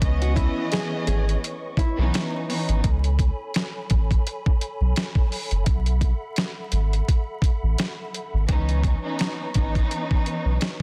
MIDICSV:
0, 0, Header, 1, 6, 480
1, 0, Start_track
1, 0, Key_signature, 4, "minor"
1, 0, Tempo, 705882
1, 10, Time_signature, 4, 2, 24, 8
1, 7358, End_track
2, 0, Start_track
2, 0, Title_t, "Tonewheel organ"
2, 0, Program_c, 0, 16
2, 0, Note_on_c, 0, 71, 73
2, 0, Note_on_c, 0, 73, 64
2, 0, Note_on_c, 0, 75, 65
2, 0, Note_on_c, 0, 85, 76
2, 1911, Note_off_c, 0, 75, 0
2, 1912, Note_off_c, 0, 71, 0
2, 1912, Note_off_c, 0, 73, 0
2, 1912, Note_off_c, 0, 85, 0
2, 1935, Note_on_c, 0, 73, 61
2, 1935, Note_on_c, 0, 83, 78
2, 1937, Note_on_c, 0, 69, 70
2, 1937, Note_on_c, 0, 80, 60
2, 3833, Note_off_c, 0, 73, 0
2, 3834, Note_off_c, 0, 80, 0
2, 3836, Note_on_c, 0, 76, 61
2, 3836, Note_on_c, 0, 78, 66
2, 5744, Note_off_c, 0, 76, 0
2, 5744, Note_off_c, 0, 78, 0
2, 5745, Note_off_c, 0, 83, 0
2, 5746, Note_off_c, 0, 69, 0
2, 5787, Note_on_c, 0, 71, 68
2, 5787, Note_on_c, 0, 75, 64
2, 5787, Note_on_c, 0, 85, 74
2, 5788, Note_on_c, 0, 73, 62
2, 7358, Note_off_c, 0, 71, 0
2, 7358, Note_off_c, 0, 73, 0
2, 7358, Note_off_c, 0, 75, 0
2, 7358, Note_off_c, 0, 85, 0
2, 7358, End_track
3, 0, Start_track
3, 0, Title_t, "Nylon-string guitar"
3, 0, Program_c, 1, 24
3, 148, Note_on_c, 1, 66, 72
3, 240, Note_off_c, 1, 66, 0
3, 242, Note_on_c, 1, 64, 83
3, 462, Note_off_c, 1, 64, 0
3, 491, Note_on_c, 1, 68, 84
3, 707, Note_off_c, 1, 68, 0
3, 730, Note_on_c, 1, 68, 75
3, 946, Note_off_c, 1, 68, 0
3, 1214, Note_on_c, 1, 64, 90
3, 1335, Note_off_c, 1, 64, 0
3, 7358, End_track
4, 0, Start_track
4, 0, Title_t, "String section"
4, 0, Program_c, 2, 48
4, 1, Note_on_c, 2, 52, 105
4, 4, Note_on_c, 2, 59, 92
4, 7, Note_on_c, 2, 61, 97
4, 10, Note_on_c, 2, 75, 106
4, 1222, Note_off_c, 2, 52, 0
4, 1223, Note_off_c, 2, 59, 0
4, 1225, Note_off_c, 2, 61, 0
4, 1226, Note_off_c, 2, 75, 0
4, 1341, Note_on_c, 2, 52, 100
4, 1344, Note_on_c, 2, 59, 91
4, 1347, Note_on_c, 2, 61, 90
4, 1350, Note_on_c, 2, 63, 103
4, 1662, Note_off_c, 2, 52, 0
4, 1664, Note_off_c, 2, 59, 0
4, 1665, Note_off_c, 2, 61, 0
4, 1667, Note_off_c, 2, 63, 0
4, 1686, Note_on_c, 2, 52, 81
4, 1689, Note_on_c, 2, 59, 72
4, 1691, Note_on_c, 2, 61, 75
4, 1693, Note_on_c, 2, 63, 94
4, 1911, Note_off_c, 2, 52, 0
4, 1913, Note_off_c, 2, 59, 0
4, 1914, Note_off_c, 2, 61, 0
4, 1915, Note_off_c, 2, 63, 0
4, 5763, Note_on_c, 2, 52, 93
4, 5766, Note_on_c, 2, 59, 82
4, 5768, Note_on_c, 2, 61, 88
4, 5773, Note_on_c, 2, 63, 101
4, 6110, Note_off_c, 2, 52, 0
4, 6112, Note_off_c, 2, 59, 0
4, 6113, Note_off_c, 2, 61, 0
4, 6115, Note_off_c, 2, 63, 0
4, 6137, Note_on_c, 2, 52, 94
4, 6140, Note_on_c, 2, 59, 86
4, 6144, Note_on_c, 2, 61, 88
4, 6146, Note_on_c, 2, 63, 104
4, 6460, Note_off_c, 2, 52, 0
4, 6462, Note_off_c, 2, 59, 0
4, 6464, Note_off_c, 2, 61, 0
4, 6465, Note_off_c, 2, 63, 0
4, 6484, Note_on_c, 2, 52, 97
4, 6487, Note_on_c, 2, 59, 89
4, 6491, Note_on_c, 2, 61, 82
4, 6493, Note_on_c, 2, 63, 116
4, 7358, Note_off_c, 2, 52, 0
4, 7358, Note_off_c, 2, 59, 0
4, 7358, Note_off_c, 2, 61, 0
4, 7358, Note_off_c, 2, 63, 0
4, 7358, End_track
5, 0, Start_track
5, 0, Title_t, "Sub bass"
5, 0, Program_c, 3, 38
5, 13, Note_on_c, 3, 37, 113
5, 324, Note_off_c, 3, 37, 0
5, 731, Note_on_c, 3, 32, 99
5, 930, Note_off_c, 3, 32, 0
5, 1347, Note_on_c, 3, 35, 94
5, 1432, Note_off_c, 3, 35, 0
5, 1828, Note_on_c, 3, 32, 98
5, 1913, Note_off_c, 3, 32, 0
5, 1933, Note_on_c, 3, 37, 109
5, 2244, Note_off_c, 3, 37, 0
5, 2656, Note_on_c, 3, 33, 92
5, 2853, Note_off_c, 3, 33, 0
5, 3268, Note_on_c, 3, 35, 92
5, 3353, Note_off_c, 3, 35, 0
5, 3749, Note_on_c, 3, 30, 97
5, 3834, Note_off_c, 3, 30, 0
5, 3852, Note_on_c, 3, 35, 114
5, 4164, Note_off_c, 3, 35, 0
5, 4572, Note_on_c, 3, 32, 96
5, 4770, Note_off_c, 3, 32, 0
5, 5188, Note_on_c, 3, 33, 93
5, 5273, Note_off_c, 3, 33, 0
5, 5669, Note_on_c, 3, 32, 93
5, 5754, Note_off_c, 3, 32, 0
5, 5772, Note_on_c, 3, 37, 103
5, 6084, Note_off_c, 3, 37, 0
5, 6497, Note_on_c, 3, 32, 88
5, 6693, Note_off_c, 3, 32, 0
5, 7108, Note_on_c, 3, 35, 94
5, 7193, Note_off_c, 3, 35, 0
5, 7358, End_track
6, 0, Start_track
6, 0, Title_t, "Drums"
6, 11, Note_on_c, 9, 36, 121
6, 12, Note_on_c, 9, 42, 86
6, 79, Note_off_c, 9, 36, 0
6, 80, Note_off_c, 9, 42, 0
6, 147, Note_on_c, 9, 42, 53
6, 215, Note_off_c, 9, 42, 0
6, 247, Note_on_c, 9, 36, 103
6, 251, Note_on_c, 9, 42, 76
6, 315, Note_off_c, 9, 36, 0
6, 319, Note_off_c, 9, 42, 0
6, 487, Note_on_c, 9, 42, 86
6, 499, Note_on_c, 9, 38, 120
6, 555, Note_off_c, 9, 42, 0
6, 567, Note_off_c, 9, 38, 0
6, 729, Note_on_c, 9, 42, 82
6, 797, Note_off_c, 9, 42, 0
6, 877, Note_on_c, 9, 42, 45
6, 945, Note_off_c, 9, 42, 0
6, 980, Note_on_c, 9, 42, 88
6, 1048, Note_off_c, 9, 42, 0
6, 1204, Note_on_c, 9, 36, 93
6, 1218, Note_on_c, 9, 42, 78
6, 1272, Note_off_c, 9, 36, 0
6, 1286, Note_off_c, 9, 42, 0
6, 1455, Note_on_c, 9, 42, 104
6, 1463, Note_on_c, 9, 38, 112
6, 1523, Note_off_c, 9, 42, 0
6, 1531, Note_off_c, 9, 38, 0
6, 1698, Note_on_c, 9, 46, 44
6, 1766, Note_off_c, 9, 46, 0
6, 1828, Note_on_c, 9, 42, 57
6, 1896, Note_off_c, 9, 42, 0
6, 1931, Note_on_c, 9, 42, 89
6, 1932, Note_on_c, 9, 36, 116
6, 1999, Note_off_c, 9, 42, 0
6, 2000, Note_off_c, 9, 36, 0
6, 2068, Note_on_c, 9, 42, 52
6, 2136, Note_off_c, 9, 42, 0
6, 2168, Note_on_c, 9, 36, 106
6, 2172, Note_on_c, 9, 42, 78
6, 2236, Note_off_c, 9, 36, 0
6, 2240, Note_off_c, 9, 42, 0
6, 2409, Note_on_c, 9, 42, 88
6, 2420, Note_on_c, 9, 38, 123
6, 2477, Note_off_c, 9, 42, 0
6, 2488, Note_off_c, 9, 38, 0
6, 2650, Note_on_c, 9, 42, 80
6, 2656, Note_on_c, 9, 36, 98
6, 2718, Note_off_c, 9, 42, 0
6, 2724, Note_off_c, 9, 36, 0
6, 2792, Note_on_c, 9, 36, 91
6, 2797, Note_on_c, 9, 42, 42
6, 2860, Note_off_c, 9, 36, 0
6, 2865, Note_off_c, 9, 42, 0
6, 2901, Note_on_c, 9, 42, 88
6, 2969, Note_off_c, 9, 42, 0
6, 3034, Note_on_c, 9, 36, 102
6, 3102, Note_off_c, 9, 36, 0
6, 3137, Note_on_c, 9, 42, 76
6, 3205, Note_off_c, 9, 42, 0
6, 3375, Note_on_c, 9, 42, 100
6, 3382, Note_on_c, 9, 38, 109
6, 3443, Note_off_c, 9, 42, 0
6, 3450, Note_off_c, 9, 38, 0
6, 3504, Note_on_c, 9, 36, 89
6, 3572, Note_off_c, 9, 36, 0
6, 3618, Note_on_c, 9, 46, 45
6, 3686, Note_off_c, 9, 46, 0
6, 3747, Note_on_c, 9, 42, 57
6, 3815, Note_off_c, 9, 42, 0
6, 3850, Note_on_c, 9, 42, 86
6, 3851, Note_on_c, 9, 36, 119
6, 3918, Note_off_c, 9, 42, 0
6, 3919, Note_off_c, 9, 36, 0
6, 3986, Note_on_c, 9, 42, 54
6, 4054, Note_off_c, 9, 42, 0
6, 4087, Note_on_c, 9, 36, 106
6, 4090, Note_on_c, 9, 42, 77
6, 4155, Note_off_c, 9, 36, 0
6, 4158, Note_off_c, 9, 42, 0
6, 4327, Note_on_c, 9, 42, 90
6, 4338, Note_on_c, 9, 38, 121
6, 4395, Note_off_c, 9, 42, 0
6, 4406, Note_off_c, 9, 38, 0
6, 4568, Note_on_c, 9, 42, 81
6, 4636, Note_off_c, 9, 42, 0
6, 4714, Note_on_c, 9, 42, 44
6, 4782, Note_off_c, 9, 42, 0
6, 4817, Note_on_c, 9, 36, 81
6, 4818, Note_on_c, 9, 42, 85
6, 4885, Note_off_c, 9, 36, 0
6, 4886, Note_off_c, 9, 42, 0
6, 5044, Note_on_c, 9, 36, 96
6, 5057, Note_on_c, 9, 42, 76
6, 5112, Note_off_c, 9, 36, 0
6, 5125, Note_off_c, 9, 42, 0
6, 5293, Note_on_c, 9, 42, 101
6, 5301, Note_on_c, 9, 38, 109
6, 5361, Note_off_c, 9, 42, 0
6, 5369, Note_off_c, 9, 38, 0
6, 5538, Note_on_c, 9, 42, 63
6, 5606, Note_off_c, 9, 42, 0
6, 5770, Note_on_c, 9, 42, 86
6, 5771, Note_on_c, 9, 36, 113
6, 5838, Note_off_c, 9, 42, 0
6, 5839, Note_off_c, 9, 36, 0
6, 5907, Note_on_c, 9, 42, 51
6, 5975, Note_off_c, 9, 42, 0
6, 6008, Note_on_c, 9, 36, 100
6, 6013, Note_on_c, 9, 42, 73
6, 6076, Note_off_c, 9, 36, 0
6, 6081, Note_off_c, 9, 42, 0
6, 6249, Note_on_c, 9, 42, 86
6, 6261, Note_on_c, 9, 38, 115
6, 6317, Note_off_c, 9, 42, 0
6, 6329, Note_off_c, 9, 38, 0
6, 6489, Note_on_c, 9, 42, 76
6, 6495, Note_on_c, 9, 36, 94
6, 6557, Note_off_c, 9, 42, 0
6, 6563, Note_off_c, 9, 36, 0
6, 6632, Note_on_c, 9, 36, 89
6, 6637, Note_on_c, 9, 42, 41
6, 6700, Note_off_c, 9, 36, 0
6, 6705, Note_off_c, 9, 42, 0
6, 6739, Note_on_c, 9, 42, 85
6, 6807, Note_off_c, 9, 42, 0
6, 6874, Note_on_c, 9, 36, 104
6, 6942, Note_off_c, 9, 36, 0
6, 6978, Note_on_c, 9, 42, 73
6, 7046, Note_off_c, 9, 42, 0
6, 7214, Note_on_c, 9, 42, 100
6, 7222, Note_on_c, 9, 38, 108
6, 7282, Note_off_c, 9, 42, 0
6, 7290, Note_off_c, 9, 38, 0
6, 7358, End_track
0, 0, End_of_file